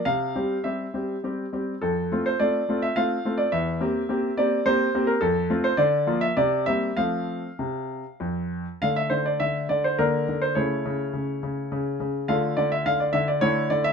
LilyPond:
<<
  \new Staff \with { instrumentName = "Grand piano" } { \time 3/4 \key f \major \tempo 4 = 104 << { f''4 e''4. r8 | a'8. c''16 d''8. e''16 f''8. d''16 | e''4. d''8 c''8. bes'16 | a'8. c''16 d''8. e''16 d''8 e''8 |
f''2 r4 | \key d \minor f''16 e''16 c''16 d''16 e''8 d''16 c''16 bes'8. c''16 | cis''2~ cis''8 r8 | f''8 d''16 e''16 f''16 d''16 e''16 d''16 cis''8 d''16 e''16 | } \\ { r2. | r2. | r2. | r2. |
r2. | <a d'>2 <bes d'>4 | <a e'>2. | <a f'>2 <a e'>4 | } >> }
  \new Staff \with { instrumentName = "Grand piano" } { \time 3/4 \key f \major c8 <g c' g'>8 <g c' g'>8 <g c' g'>8 <g c' g'>8 <g c' g'>8 | f,8 <a c' f'>8 <a c' f'>8 <a c' f'>8 <a c' f'>8 <a c' f'>8 | e,8 <bes c' g'>8 <bes c' g'>8 <bes c' g'>8 <bes c' g'>8 <bes c' g'>8 | f,8 <a c' f'>8 d8 <f bes f'>8 c8 <g bes c'>8 |
<f a c'>4 c4 f,4 | \key d \minor d8 d8 d8 d8 d8 d8 | cis8 cis8 cis8 cis8 cis8 cis8 | d8 d8 d8 d8 d8 d8 | }
>>